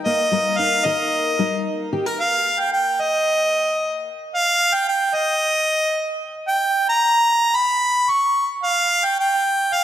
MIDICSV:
0, 0, Header, 1, 3, 480
1, 0, Start_track
1, 0, Key_signature, -3, "major"
1, 0, Tempo, 537153
1, 37, Time_signature, 4, 2, 24, 8
1, 8792, End_track
2, 0, Start_track
2, 0, Title_t, "Harmonica"
2, 0, Program_c, 0, 22
2, 42, Note_on_c, 0, 75, 76
2, 516, Note_on_c, 0, 77, 82
2, 529, Note_off_c, 0, 75, 0
2, 762, Note_on_c, 0, 75, 72
2, 775, Note_off_c, 0, 77, 0
2, 1481, Note_off_c, 0, 75, 0
2, 1964, Note_on_c, 0, 77, 77
2, 2322, Note_on_c, 0, 79, 85
2, 2335, Note_off_c, 0, 77, 0
2, 2431, Note_off_c, 0, 79, 0
2, 2436, Note_on_c, 0, 79, 76
2, 2694, Note_on_c, 0, 75, 73
2, 2707, Note_off_c, 0, 79, 0
2, 3648, Note_off_c, 0, 75, 0
2, 3877, Note_on_c, 0, 77, 85
2, 4238, Note_on_c, 0, 79, 90
2, 4252, Note_off_c, 0, 77, 0
2, 4356, Note_off_c, 0, 79, 0
2, 4361, Note_on_c, 0, 79, 81
2, 4601, Note_on_c, 0, 75, 81
2, 4614, Note_off_c, 0, 79, 0
2, 5561, Note_off_c, 0, 75, 0
2, 5787, Note_on_c, 0, 79, 84
2, 6128, Note_off_c, 0, 79, 0
2, 6156, Note_on_c, 0, 82, 93
2, 6754, Note_on_c, 0, 83, 93
2, 6767, Note_off_c, 0, 82, 0
2, 7238, Note_on_c, 0, 85, 90
2, 7251, Note_off_c, 0, 83, 0
2, 7598, Note_off_c, 0, 85, 0
2, 7713, Note_on_c, 0, 77, 83
2, 8086, Note_on_c, 0, 79, 87
2, 8099, Note_off_c, 0, 77, 0
2, 8201, Note_off_c, 0, 79, 0
2, 8217, Note_on_c, 0, 79, 86
2, 8703, Note_on_c, 0, 77, 83
2, 8716, Note_off_c, 0, 79, 0
2, 8792, Note_off_c, 0, 77, 0
2, 8792, End_track
3, 0, Start_track
3, 0, Title_t, "Steel-string acoustic guitar"
3, 0, Program_c, 1, 25
3, 0, Note_on_c, 1, 51, 62
3, 0, Note_on_c, 1, 63, 48
3, 0, Note_on_c, 1, 70, 54
3, 50, Note_on_c, 1, 58, 48
3, 232, Note_off_c, 1, 51, 0
3, 280, Note_off_c, 1, 70, 0
3, 281, Note_on_c, 1, 55, 50
3, 291, Note_on_c, 1, 70, 56
3, 524, Note_off_c, 1, 63, 0
3, 527, Note_on_c, 1, 63, 48
3, 711, Note_off_c, 1, 55, 0
3, 755, Note_off_c, 1, 70, 0
3, 760, Note_on_c, 1, 51, 53
3, 766, Note_on_c, 1, 70, 54
3, 1191, Note_off_c, 1, 51, 0
3, 1236, Note_off_c, 1, 63, 0
3, 1241, Note_on_c, 1, 55, 51
3, 1246, Note_on_c, 1, 63, 46
3, 1672, Note_off_c, 1, 55, 0
3, 1694, Note_off_c, 1, 63, 0
3, 1694, Note_off_c, 1, 70, 0
3, 1720, Note_on_c, 1, 51, 60
3, 1721, Note_on_c, 1, 67, 51
3, 1842, Note_on_c, 1, 70, 45
3, 1843, Note_off_c, 1, 67, 0
3, 1960, Note_off_c, 1, 51, 0
3, 1961, Note_off_c, 1, 70, 0
3, 3648, Note_off_c, 1, 58, 0
3, 8792, End_track
0, 0, End_of_file